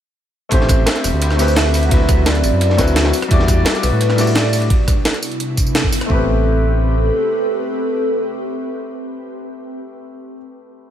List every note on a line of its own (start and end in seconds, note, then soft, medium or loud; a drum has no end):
0.49 0.85 A1 loud
0.49 1.35 A3 medium
0.49 1.36 C4 medium
0.49 3.11 C4 medium
0.49 1.90 G4 medium
0.49 1.37 G4 medium
0.49 3.11 B5 medium
0.49 kick loud
0.49 closed hi-hat loud
0.49 ride loud
0.54 1.38 C5 loud
0.61 snare medium
0.68 kick loud
0.68 cross-stick soft
0.68 closed hi-hat medium
0.68 ride medium
0.68 tambourine medium
0.86 snare loud
0.86 closed hi-hat medium
0.86 ride medium
0.95 snare medium
0.95 closed hi-hat soft
1.04 1.12 E1 medium
1.04 1.58 C5 loud
1.04 cross-stick soft
1.04 open hi-hat medium
1.04 ride medium
1.04 tambourine medium
1.13 1.90 D2 loud
1.22 closed hi-hat loud
1.22 ride medium
1.30 cross-stick soft
1.30 snare soft
1.36 1.88 A3 medium
1.36 1.89 C4 medium
1.36 1.90 G4 medium
1.36 snare medium
1.36 closed hi-hat medium
1.36 open hi-hat medium
1.36 tambourine medium
1.42 1.91 B4 medium
1.48 tambourine soft
1.56 1.84 E5 loud
1.56 snare loud
1.56 closed hi-hat loud
1.56 ride medium
1.74 open hi-hat medium
1.74 ride medium
1.74 tambourine medium
1.82 1.92 F#5 medium
1.82 closed hi-hat soft
1.82 ride soft
1.89 2.42 D2 medium
1.89 2.75 F#3 medium
1.89 2.76 C4 medium
1.89 3.12 E4 medium
1.89 2.77 E4 medium
1.89 4.68 F#4 medium
1.89 2.27 E5 loud
1.89 kick loud
1.89 closed hi-hat loud
1.89 ride loud
1.94 2.78 B4 medium
2.09 kick loud
2.09 cross-stick soft
2.09 closed hi-hat medium
2.09 ride medium
2.09 tambourine medium
2.26 3.13 D5 loud
2.26 snare loud
2.26 closed hi-hat medium
2.26 ride medium
2.35 closed hi-hat soft
2.44 2.52 A1 medium
2.44 open hi-hat medium
2.44 ride medium
2.44 tambourine medium
2.53 2.77 F#2 loud
2.61 closed hi-hat loud
2.61 ride medium
2.70 snare medium
2.77 3.12 D2 medium
2.77 3.12 F#3 loud
2.77 3.12 C4 medium
2.77 3.13 E4 medium
2.77 3.13 B4 loud
2.77 kick medium
2.77 snare loud
2.77 closed hi-hat medium
2.77 ride medium
2.77 tambourine medium
2.87 tambourine soft
2.96 snare loud
2.96 closed hi-hat medium
2.96 ride medium
3.05 snare loud
3.05 ride medium
3.13 4.69 G3 medium
3.13 6.07 D4 medium
3.13 open hi-hat medium
3.13 tambourine medium
3.22 cross-stick medium
3.22 closed hi-hat soft
3.22 ride medium
3.28 3.64 E2 loud
3.28 4.14 G3 medium
3.28 4.15 E4 medium
3.28 4.16 F#4 medium
3.28 kick loud
3.28 closed hi-hat loud
3.28 ride loud
3.33 4.17 D5 loud
3.39 snare medium
3.48 kick loud
3.48 cross-stick soft
3.48 closed hi-hat medium
3.48 ride medium
3.48 tambourine medium
3.65 snare loud
3.65 closed hi-hat medium
3.65 ride medium
3.75 snare medium
3.75 closed hi-hat soft
3.83 3.91 B1 medium
3.83 4.37 B4 loud
3.83 cross-stick soft
3.83 open hi-hat medium
3.83 ride medium
3.83 tambourine medium
3.92 4.69 A2 medium
4.01 closed hi-hat medium
4.01 ride medium
4.09 cross-stick soft
4.09 snare soft
4.15 4.67 G3 medium
4.15 4.68 E4 medium
4.15 4.69 F#4 medium
4.15 snare soft
4.15 closed hi-hat medium
4.15 open hi-hat medium
4.15 tambourine medium
4.20 4.69 D5 medium
4.27 tambourine soft
4.35 4.70 D5 loud
4.35 snare loud
4.35 closed hi-hat medium
4.35 ride medium
4.53 open hi-hat medium
4.53 ride medium
4.53 tambourine medium
4.61 closed hi-hat soft
4.61 ride soft
4.70 6.08 C3 medium
4.70 6.08 B3 medium
4.70 6.08 E4 medium
4.70 kick loud
4.70 closed hi-hat medium
4.88 kick loud
4.88 cross-stick soft
4.88 closed hi-hat medium
4.88 tambourine medium
5.05 snare loud
5.05 closed hi-hat medium
5.14 closed hi-hat soft
5.23 open hi-hat medium
5.23 tambourine medium
5.32 closed hi-hat soft
5.40 closed hi-hat medium
5.57 kick medium
5.57 closed hi-hat medium
5.57 tambourine medium
5.67 tambourine soft
5.75 snare loud
5.75 closed hi-hat medium
5.84 kick medium
5.92 open hi-hat medium
5.92 tambourine medium
6.01 cross-stick soft
6.01 closed hi-hat soft
6.06 7.11 A1 loud
6.06 10.33 A3 medium
6.06 10.34 C4 medium
6.06 9.65 C4 medium
6.06 9.65 G4 medium
6.06 9.65 A4 loud
6.06 9.65 B4 medium
6.06 kick loud
6.11 10.36 G4 medium
6.11 10.37 B4 medium